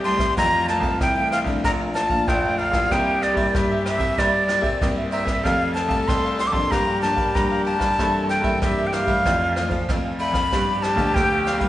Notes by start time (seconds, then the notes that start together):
Already playing: C2 C3 G4
0.04 G3 A3 E4 G4 C5 E5 A5 C6, ride
0.17 C2 C5 E5 A5, kick, cross-stick, ride
0.36 F2 E3 A3 C4 F4 C5 F5 A#5, kick, cross-stick, ride
0.68 E3 A3 C4 A5, cross-stick, ride
0.80 C2 A4 C5 F5, kick, ride
1.00 C2 C3 E4 G5, kick, cross-stick, ride
1.18 E3 A3 C4 A4 C5 F5
1.31 E4 A4 C5 F5, cross-stick, ride
1.44 C2 F3 A3 D4 A4 C5 F5, kick, ride
1.64 A#1 A#2 F4 A4 D5 F5 A#5, kick, cross-stick, ride
1.81 D5 F5 A#5
1.94 A5, muted cavaquinho stroke, cross-stick, ride
2.08 A#2 F3 A3 D4 F5 A#5, kick, ride
2.12 D5
2.28 A#1 F2 G5, kick, cross-stick, ride
2.45 F3 A3 D4 D5 F5 A#5
2.58 A4 D5 F5 A#5, ride
2.71 A#1 A#3 E4 G4 D5 F5 A#5, kick, cross-stick, ride
2.90 C2 C3 E4 G4 A#4 C5 E5 G5, kick, cross-stick, ride
3.22 D5, muted cavaquinho stroke, cross-stick, ride
3.34 G2 A#3 E4 G4 A#4 C5 E5, kick, ride
3.55 G2 E5, kick, cross-stick, ride
3.71 A#4 C5 E5
3.85 E4 A#4 C5 E5, cross-stick, ride
3.98 C2 A#3 E4 G4 A#4 C5 E5, kick, ride
4.17 G2 C3 E4 A#4 C5 D5 E5, kick, cross-stick, ride
4.34 A#4 C5 E5
4.48 A#3 E4 G4, muted cavaquinho stroke, cross-stick, ride
4.62 C3 A#4 C5 E5, kick, ride
4.81 C2 G2 A#3 E4 G4, kick, cross-stick, ride
4.97 A#4 C5 E5
5.11 E4 A#4 C5 E5, ride
5.25 C2 A#4 C5 E5, kick, cross-stick, ride
5.37 G#4
5.43 F2 F3 A3 C4 G4 A4 F5 A5, kick, cross-stick, ride
5.74 A5, muted cavaquinho stroke, cross-stick, ride
5.88 C2 A3 C4 G4 F5 A5, kick, ride
6.08 C2 C3 C6, kick, cross-stick, ride
6.24 G4 F5 A5
6.38 G4 A4 F5 A5 C6, cross-stick, ride
6.47 D6
6.52 F2 F3 A#3 D4 G4 F5 A5 C6, kick, ride
6.70 G2 G4 A#4 D5 F5 A#5, kick, cross-stick, ride
6.87 A#4 D5 F5
7.02 F3 A#3 D4 A5, muted cavaquinho stroke, cross-stick, ride
7.15 G3 A#4 D5 F5, kick, ride
7.35 G2 D3 F3 A#3 D4 A#5, kick, cross-stick, ride
7.51 A#4 D5 F5
7.65 G4 A#4 D5 F5 A5, ride
7.78 G2 A#4 D5 F5, kick, cross-stick, ride
7.98 G2 E3 A#3 C4 E4 A4 C5 E5, kick, cross-stick, ride
8.29 G5, muted cavaquinho stroke, cross-stick, ride
8.41 G2 E3 A#3 C4 C5 E5, kick, ride
8.46 A#4
8.62 G2 G4 E5, kick, cross-stick, ride
8.78 A#4 C5 E5
8.87 G5
8.92 E4 A#4 C5 E5 F5, cross-stick, ride
9.05 G2 E3 A3 C4 A#4 C5 E5, kick, ride
9.25 F2 E4 F4 A4 C5 F5, kick, cross-stick, ride
9.42 A4 C5 F5
9.56 E3 A3 C4, muted cavaquinho stroke, cross-stick, ride
9.69 F3 A4 C5 F5, kick, ride
9.89 F2 C3 A3 C4, kick, cross-stick, ride
10.05 A4 C5 F5
10.19 E4 A4 C5 F5 B5, ride
10.32 F2 A4 C5 F5, kick, cross-stick, ride
10.52 G2 F3 B3 D4 G4 B4 F5, kick, cross-stick, ride
10.82 A5, cross-stick, ride
10.95 D2 F3 B3 D4 G4 B4 F5, kick, ride
11.14 D2 D3 G5, kick, cross-stick, ride
11.32 G4 B4 F5
11.46 D4 G4 B4 F5, cross-stick, ride
11.59 G2 G3 A#3 E4 G4 B4 F5, kick, ride